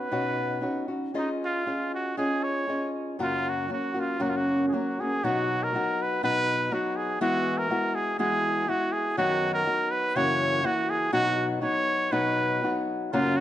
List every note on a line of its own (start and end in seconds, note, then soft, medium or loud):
0.00 0.11 B3 soft
0.00 0.11 C#4 medium
0.00 0.11 D#4 soft
0.00 0.11 F#4 medium
0.00 0.86 B4 medium
0.11 0.63 B2 medium
0.11 0.60 B3 medium
0.11 0.62 C#4 medium
0.11 0.61 D#4 medium
0.11 0.62 F#4 medium
0.61 0.89 B3 soft
0.61 0.88 C#4 medium
0.61 0.88 D#4 soft
0.61 0.87 F#4 soft
0.88 1.13 C#4 soft
0.88 1.14 D#4 soft
0.88 1.14 F#4 soft
1.14 1.66 C#4 medium
1.14 1.66 F4 medium
1.14 1.66 G#4 medium
1.14 1.66 D#5 medium
1.18 1.29 D#4 medium
1.45 1.91 F4 medium
1.66 2.17 C#4 soft
1.66 2.17 F4 soft
1.66 2.17 G#4 soft
1.66 2.18 D#5 soft
1.94 2.17 F#4 medium
2.17 2.67 C#4 medium
2.17 2.67 F4 medium
2.17 2.45 G#4 medium
2.17 2.68 G#4 medium
2.17 2.68 D#5 medium
2.43 2.94 C#5 medium
2.68 3.19 C#4 soft
2.68 3.19 F4 soft
2.68 3.19 G#4 soft
2.68 3.20 D#5 soft
3.19 3.70 F#2 medium
3.19 3.70 C#3 medium
3.19 3.68 F#3 medium
3.19 3.68 A#3 medium
3.19 3.68 C#4 medium
3.19 3.51 F4 medium
3.19 3.69 F#4 medium
3.49 3.72 F#4 medium
3.68 3.95 F#3 soft
3.68 3.95 A#3 soft
3.68 3.94 C#4 medium
3.68 3.93 F#4 soft
3.73 4.02 F#4 medium
3.94 4.19 F#3 soft
3.94 4.19 A#3 soft
3.94 4.18 C#4 soft
3.94 4.19 F#4 soft
4.00 4.24 F4 medium
4.20 4.72 F#2 medium
4.20 4.72 C#3 medium
4.20 4.72 F#3 medium
4.20 4.72 A#3 medium
4.20 4.72 C#4 medium
4.20 4.74 F#4 medium
4.20 4.31 F#4 medium
4.29 4.38 F4 medium
4.37 4.67 F#4 medium
4.69 4.99 F#3 medium
4.69 4.75 G#4 soft
4.74 4.99 A#3 soft
4.74 5.00 C#4 medium
4.74 5.02 F#4 medium
4.74 4.98 F#4 medium
5.00 5.23 F#3 soft
5.00 5.24 A#3 soft
5.00 5.24 C#4 soft
5.00 5.23 F#4 soft
5.00 5.25 G#4 medium
5.23 5.74 B2 medium
5.23 5.73 F#3 medium
5.23 5.74 B3 medium
5.23 5.74 D#4 medium
5.23 5.65 F#4 medium
5.23 5.75 F#4 medium
5.63 6.04 A#4 medium
5.74 6.23 F#3 medium
5.74 6.23 B3 medium
5.74 6.22 D#4 soft
5.74 6.24 F#4 medium
6.02 6.24 B4 medium
6.23 6.72 B2 medium
6.23 6.71 F#3 medium
6.23 6.72 B3 medium
6.23 6.71 D#4 medium
6.23 6.73 F#4 medium
6.23 6.75 B4 loud
6.71 7.21 F#3 medium
6.71 7.21 B3 medium
6.71 7.21 D#4 soft
6.71 7.21 F#4 medium
6.71 6.98 F#4 medium
6.97 7.21 G#4 medium
7.21 7.70 E3 medium
7.21 7.68 G#3 medium
7.21 7.70 B3 medium
7.21 7.69 E4 medium
7.21 7.59 F#4 medium
7.21 7.71 F#4 medium
7.58 7.96 A#4 medium
7.69 8.18 G#3 soft
7.69 8.19 B3 soft
7.69 8.18 E4 medium
7.69 8.20 F#4 medium
7.95 8.18 G#4 medium
8.18 8.68 E3 medium
8.18 8.67 G#3 medium
8.18 8.67 B3 medium
8.18 8.68 E4 medium
8.18 8.69 F#4 medium
8.18 8.70 G#4 medium
8.68 9.18 G#3 soft
8.68 9.17 B3 soft
8.68 9.18 E4 medium
8.68 8.94 F#4 medium
8.68 9.18 F#4 medium
8.92 9.17 G#4 medium
9.17 9.67 F#2 medium
9.17 9.67 D#3 medium
9.17 9.65 F#3 medium
9.17 9.66 B3 medium
9.17 9.66 D#4 medium
9.17 9.53 F#4 loud
9.17 9.67 F#4 medium
9.54 9.92 A#4 loud
9.66 10.16 F#3 soft
9.66 10.16 B3 medium
9.66 10.16 D#4 medium
9.66 10.16 F#4 soft
9.91 10.18 B4 loud
10.16 10.65 F#2 medium
10.16 10.65 C#3 medium
10.16 10.62 E3 medium
10.16 10.63 A#3 medium
10.16 10.63 E4 medium
10.16 10.64 F#4 medium
10.16 10.67 C#5 loud
10.63 11.12 E3 soft
10.63 11.12 A#3 soft
10.63 11.13 E4 medium
10.63 11.13 F#4 medium
10.63 10.91 F#4 loud
10.90 11.12 G#4 medium
11.13 11.62 B2 medium
11.13 11.61 F#3 medium
11.13 11.61 B3 medium
11.13 11.61 D#4 medium
11.13 11.48 F#4 loud
11.13 11.63 F#4 medium
11.61 12.12 F#3 medium
11.61 12.11 B3 medium
11.61 12.12 D#4 medium
11.61 12.12 F#4 medium
11.61 12.13 C#5 loud
12.11 12.62 B2 medium
12.11 12.63 F#3 medium
12.11 12.62 B3 medium
12.11 12.62 D#4 medium
12.11 12.64 F#4 medium
12.11 12.88 B4 medium
12.63 13.13 F#3 soft
12.63 13.12 B3 medium
12.63 13.13 D#4 soft
12.63 13.13 F#4 medium
13.12 13.40 F#2 medium
13.12 13.40 C#3 medium
13.12 13.40 F#3 medium
13.12 13.40 A#3 medium
13.12 13.40 C#4 medium
13.12 13.38 F4 medium
13.12 13.40 F#4 medium
13.37 13.40 F#4 medium